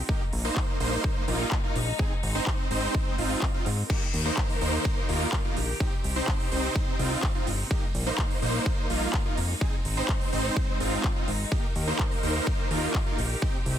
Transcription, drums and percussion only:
0.09 kick
0.33 open hi-hat
0.56 kick, clap
0.80 open hi-hat
1.04 kick
1.28 open hi-hat
1.52 kick, clap
1.76 open hi-hat
1.99 kick
2.23 open hi-hat
2.47 kick, clap
2.71 open hi-hat
2.95 kick
3.18 open hi-hat
3.42 kick, clap
3.66 open hi-hat
3.90 kick, crash, ride
4.14 open hi-hat
4.37 kick, clap, ride
4.49 open hi-hat
4.61 open hi-hat
4.85 kick, ride
5.09 open hi-hat
5.33 kick, clap, ride
5.57 open hi-hat
5.80 kick, ride
6.04 open hi-hat
6.28 kick, clap, ride
6.40 open hi-hat
6.52 open hi-hat
6.76 kick, ride
6.99 open hi-hat
7.23 kick, clap, ride
7.47 open hi-hat
7.71 kick, ride
7.95 open hi-hat
8.18 kick, clap, ride
8.30 open hi-hat
8.42 open hi-hat
8.66 kick, ride
8.90 open hi-hat
9.13 kick, clap, ride
9.37 open hi-hat
9.61 kick, ride
9.85 open hi-hat
10.09 kick, clap, ride
10.21 open hi-hat
10.33 open hi-hat
10.57 kick, ride
10.80 open hi-hat
11.04 kick, clap, ride
11.28 open hi-hat
11.52 kick, ride
11.76 open hi-hat
11.99 kick, clap, ride
12.11 open hi-hat
12.23 open hi-hat
12.47 kick, ride
12.71 open hi-hat
12.94 kick, clap, ride
13.18 open hi-hat
13.42 kick, ride
13.66 open hi-hat

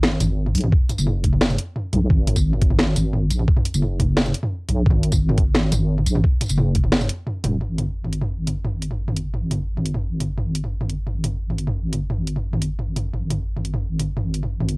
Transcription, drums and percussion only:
0.03 snare, mid tom
0.20 closed hi-hat, mid tom, tambourine
0.46 mid tom
0.55 closed hi-hat, tambourine
0.58 closed hi-hat
0.61 closed hi-hat, mid tom
0.72 kick
0.89 closed hi-hat, mid tom, tambourine
0.98 tambourine
1.07 mid tom
1.24 kick, closed hi-hat
1.33 mid tom
1.41 snare
1.50 mid tom, tambourine
1.58 closed hi-hat
1.76 mid tom
1.93 closed hi-hat, mid tom
2.10 kick, mid tom
2.27 closed hi-hat, mid tom
2.36 kick, tambourine
2.53 mid tom
2.62 kick, closed hi-hat
2.70 mid tom
2.79 snare
2.96 closed hi-hat, mid tom, tambourine
3.13 mid tom
3.30 closed hi-hat, tambourine
3.39 mid tom
3.48 kick
3.57 mid tom
3.65 closed hi-hat, tambourine
3.74 tambourine
3.82 mid tom
4.00 kick, closed hi-hat, mid tom
4.17 snare
4.26 mid tom, tambourine
4.34 closed hi-hat
4.43 mid tom
4.69 closed hi-hat, mid tom
4.86 kick
4.90 mid tom
5.03 closed hi-hat
5.12 kick, mid tom, tambourine
5.29 mid tom
5.38 kick, closed hi-hat
5.55 snare, mid tom
5.72 closed hi-hat, mid tom, tambourine
5.98 mid tom
6.06 closed hi-hat, tambourine
6.15 mid tom
6.24 kick
6.41 closed hi-hat, mid tom, tambourine
6.44 tambourine
6.46 tambourine
6.48 closed hi-hat, tambourine
6.51 tambourine
6.56 mid tom, tambourine
6.75 kick, closed hi-hat
6.84 mid tom
6.92 snare
7.01 mid tom, tambourine
7.09 closed hi-hat
7.27 mid tom
7.44 closed hi-hat, mid tom
7.61 mid tom
7.78 closed hi-hat, mid tom
8.05 mid tom
8.13 closed hi-hat
8.22 mid tom
8.47 closed hi-hat, mid tom
8.65 mid tom
8.82 closed hi-hat
8.91 mid tom
9.08 mid tom
9.17 closed hi-hat
9.34 mid tom
9.51 closed hi-hat, mid tom
9.77 mid tom
9.86 closed hi-hat
9.94 mid tom
10.20 closed hi-hat, mid tom
10.38 mid tom
10.55 closed hi-hat
10.64 mid tom
10.81 mid tom
10.89 closed hi-hat
11.07 mid tom
11.24 closed hi-hat, mid tom
11.50 mid tom
11.58 closed hi-hat
11.67 mid tom
11.93 closed hi-hat, mid tom
12.10 mid tom
12.27 closed hi-hat
12.36 mid tom
12.53 mid tom
12.62 closed hi-hat
12.79 mid tom
12.96 closed hi-hat, mid tom
13.13 mid tom
13.30 closed hi-hat, mid tom
13.57 mid tom
13.65 closed hi-hat
13.74 mid tom
13.99 closed hi-hat, mid tom
14.17 mid tom
14.34 closed hi-hat
14.43 mid tom
14.60 mid tom
14.69 closed hi-hat

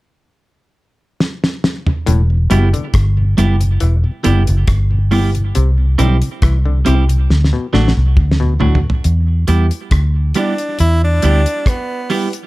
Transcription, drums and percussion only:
1.20 snare
1.44 snare
1.64 snare
1.87 mid tom
2.07 closed hi-hat
2.51 closed hi-hat
2.74 closed hi-hat
2.94 kick, cross-stick, closed hi-hat
3.38 closed hi-hat
3.61 closed hi-hat
3.80 closed hi-hat
4.24 closed hi-hat
4.47 closed hi-hat
4.67 kick, cross-stick, closed hi-hat
5.11 open hi-hat
5.35 closed hi-hat
5.55 closed hi-hat
5.99 closed hi-hat
6.22 closed hi-hat
6.42 kick, cross-stick, closed hi-hat
6.86 closed hi-hat
7.09 closed hi-hat
7.30 snare
7.44 snare
7.74 snare
7.88 snare
8.17 kick, mid tom
8.31 snare
8.61 floor tom
8.75 floor tom
8.90 floor tom
9.04 closed hi-hat
9.48 closed hi-hat
9.71 closed hi-hat
9.91 kick, cross-stick, closed hi-hat
10.34 closed hi-hat
10.58 closed hi-hat
10.79 closed hi-hat
11.22 closed hi-hat
11.46 closed hi-hat
11.66 kick, cross-stick, closed hi-hat
12.10 open hi-hat
12.33 closed hi-hat

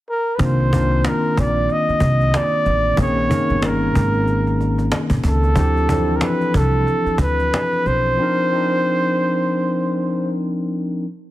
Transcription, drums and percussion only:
0.39 cajon bass
0.60 cajon slap
0.73 cajon bass
0.91 cajon slap
1.05 cajon slap
1.24 cajon slap
1.37 cajon bass
1.55 cajon slap
1.69 cajon slap
1.89 cajon slap
2.00 cajon bass
2.20 cajon slap
2.34 cajon slap
2.52 cajon slap
2.65 cajon slap
2.85 cajon slap
2.97 cajon bass
3.18 cajon slap
3.31 cajon bass
3.50 cajon slap
3.62 cajon slap
3.82 cajon slap
3.95 cajon bass
4.13 cajon slap
4.27 cajon slap
4.47 cajon slap
4.61 cajon slap
4.78 cajon slap
4.92 cajon slap
5.10 cajon bass
5.24 cajon bass
5.43 cajon slap
5.56 cajon bass
5.77 cajon slap
5.89 cajon bass
6.08 cajon slap
6.21 cajon slap
6.41 cajon slap
6.54 cajon bass
6.72 cajon slap
6.87 cajon slap
7.06 cajon slap
7.18 cajon bass
7.39 cajon slap
7.54 cajon slap
7.72 cajon slap
7.86 cajon slap
8.06 cajon slap

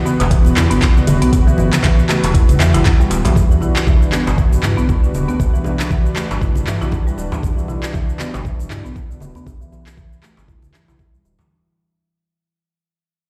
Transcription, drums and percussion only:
0.05 muted conga, djembe tone, high conga, shaker
0.20 closed hi-hat, djembe slap, shaker
0.31 kick, closed hi-hat, djembe tone, shaker
0.45 muted conga, shaker
0.56 clap, closed hi-hat, high conga, djembe tone, shaker
0.71 closed hi-hat, shaker
0.81 kick, clap, closed hi-hat, muted conga, djembe tone, shaker
0.96 mid tom, shaker
1.07 closed hi-hat, djembe tone, high conga, shaker
1.22 closed hi-hat, muted conga, shaker
1.33 kick, closed hi-hat, djembe tone, djembe bass, shaker
1.47 mid tom, shaker
1.58 djembe tone, low conga, shaker
1.73 clap, closed hi-hat, mid tom, muted conga, shaker
1.83 kick, clap, closed hi-hat, djembe tone, high conga, low conga, shaker
1.99 shaker
2.08 clap, closed hi-hat, high conga, djembe tone, shaker
2.24 closed hi-hat, djembe slap, shaker
2.34 kick, closed hi-hat, djembe tone, shaker
2.49 closed hi-hat, muted conga, high conga, shaker
2.60 clap, closed hi-hat, djembe tone, shaker
2.73 closed hi-hat, djembe slap, high conga, shaker
2.85 kick, clap, closed hi-hat, muted conga, djembe tone, low conga, shaker
3.01 shaker
3.10 closed hi-hat, djembe slap, djembe tone, shaker
3.25 closed hi-hat, djembe slap, muted conga, low conga, shaker
3.35 kick, djembe tone, djembe bass, shaker
3.51 shaker
3.61 djembe tone, shaker
3.76 clap, muted conga, shaker
3.87 kick, high conga, djembe tone, shaker
4.02 shaker
4.12 clap, muted conga, high conga, djembe tone, shaker
4.27 djembe slap, shaker
4.38 kick, djembe tone, shaker
4.53 muted conga, shaker
4.62 clap, high conga, djembe tone, shaker
4.78 shaker
4.89 kick, muted conga, djembe tone, shaker
5.04 shaker
5.15 djembe tone, high conga, shaker
5.29 muted conga, shaker
5.39 kick, djembe tone, djembe bass, shaker
5.55 shaker
5.64 djembe tone, shaker
5.79 clap, muted conga, shaker
5.90 kick, high conga, djembe tone, shaker
6.06 shaker
6.16 clap, djembe tone, shaker
6.31 djembe slap, shaker
6.41 kick, djembe tone, shaker
6.55 muted conga, high conga, shaker
6.67 clap, djembe tone, shaker
6.81 djembe slap, high conga, shaker
6.92 kick, muted conga, djembe tone, low conga, shaker
7.07 shaker
7.18 djembe tone, shaker
7.32 djembe slap, muted conga, low conga, shaker
7.43 kick, djembe tone, djembe bass, shaker
7.58 shaker
7.68 djembe tone, shaker
7.82 clap, muted conga, shaker
7.93 kick, djembe tone, high conga, shaker
8.09 shaker
8.19 clap, muted conga, high conga, djembe tone, shaker
8.34 djembe slap, shaker
8.45 kick, djembe tone, shaker
8.60 muted conga, shaker
8.70 clap, djembe tone, high conga, shaker
8.86 shaker
8.95 kick, muted conga, djembe tone, shaker
9.11 shaker
9.20 high conga, djembe tone, shaker
9.35 muted conga, shaker
9.46 kick, djembe tone, djembe bass, shaker
9.62 shaker
9.73 djembe tone, shaker
9.86 clap, muted conga, shaker
9.97 kick, high conga, djembe tone, shaker
10.13 shaker
10.22 clap, djembe tone, shaker
10.37 djembe slap, shaker
10.48 kick, djembe tone, shaker
10.62 muted conga, high conga, shaker
10.74 clap, djembe tone, shaker
10.88 djembe slap, high conga, shaker
10.99 kick, muted conga, djembe tone, low conga, shaker
11.14 shaker
11.25 djembe tone, shaker
11.39 djembe slap, muted conga, low conga, shaker

